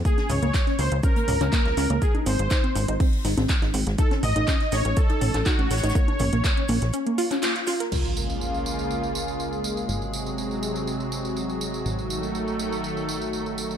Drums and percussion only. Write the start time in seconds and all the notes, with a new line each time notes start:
0.05 kick, closed hi-hat, shaker
0.18 snare, closed hi-hat, high conga
0.29 mid tom, open hi-hat, shaker
0.43 closed hi-hat
0.54 kick, snare, clap, closed hi-hat, shaker
0.67 snare, closed hi-hat
0.79 open hi-hat, high conga, shaker
0.92 closed hi-hat
1.03 kick, closed hi-hat, shaker
1.16 closed hi-hat
1.28 mid tom, open hi-hat, shaker
1.41 clap, closed hi-hat, high conga
1.53 kick, snare, clap, closed hi-hat, shaker
1.65 snare, closed hi-hat
1.77 snare, open hi-hat, shaker
1.90 closed hi-hat
2.02 kick, closed hi-hat, shaker
2.15 closed hi-hat, high conga
2.26 open hi-hat, shaker
2.39 closed hi-hat
2.50 kick, snare, clap, closed hi-hat, shaker
2.64 closed hi-hat
2.75 open hi-hat, high conga, shaker
2.88 closed hi-hat
3.00 kick, closed hi-hat, open hi-hat
3.13 closed hi-hat
3.25 snare, open hi-hat, shaker
3.37 snare, closed hi-hat, high conga
3.49 kick, snare, clap, closed hi-hat, shaker
3.62 snare, closed hi-hat
3.74 open hi-hat, shaker
3.87 snare, closed hi-hat
3.98 kick, closed hi-hat, shaker
4.11 snare, closed hi-hat, high conga
4.23 mid tom, open hi-hat, shaker
4.36 closed hi-hat
4.48 kick, snare, clap, closed hi-hat, shaker
4.60 snare, closed hi-hat
4.72 snare, open hi-hat, high conga, shaker
4.85 closed hi-hat
4.97 kick, closed hi-hat, shaker
5.10 closed hi-hat
5.21 mid tom, open hi-hat, shaker
5.34 snare, clap, closed hi-hat, high conga
5.46 kick, clap, closed hi-hat, shaker
5.59 closed hi-hat
5.71 snare, open hi-hat, shaker
5.77 snare, shaker
5.83 snare, closed hi-hat, shaker
5.89 snare, shaker
5.95 kick, closed hi-hat, shaker
6.08 closed hi-hat, high conga
6.19 mid tom, open hi-hat, shaker
6.33 closed hi-hat
6.44 kick, snare, clap, closed hi-hat, shaker
6.57 closed hi-hat
6.68 open hi-hat, high conga, shaker
6.81 snare, closed hi-hat
6.93 closed hi-hat, shaker
7.07 closed hi-hat
7.18 open hi-hat, shaker
7.31 clap, closed hi-hat, high conga
7.42 snare, clap, closed hi-hat, shaker
7.56 snare, closed hi-hat
7.67 snare, open hi-hat, shaker
7.80 snare, closed hi-hat
7.92 tambourine, crash
8.05 tambourine
8.17 tambourine
8.30 tambourine
8.41 tambourine
8.54 tambourine
8.66 tambourine
8.79 tambourine
8.91 tambourine
9.03 tambourine
9.15 tambourine
9.28 tambourine
9.40 tambourine
9.53 tambourine
9.64 tambourine
9.77 tambourine
9.89 tambourine
10.02 tambourine
10.13 tambourine
10.26 tambourine
10.38 tambourine
10.51 tambourine
10.63 tambourine
10.76 tambourine
10.87 tambourine
11.00 tambourine
11.12 tambourine
11.25 tambourine
11.37 tambourine
11.49 tambourine
11.61 tambourine
11.74 tambourine
11.86 tambourine
11.99 tambourine
12.10 tambourine
12.23 tambourine
12.35 tambourine
12.48 tambourine
12.59 tambourine
12.72 tambourine
12.84 tambourine
12.97 tambourine
13.09 tambourine
13.22 tambourine
13.33 tambourine
13.46 tambourine
13.58 tambourine
13.71 tambourine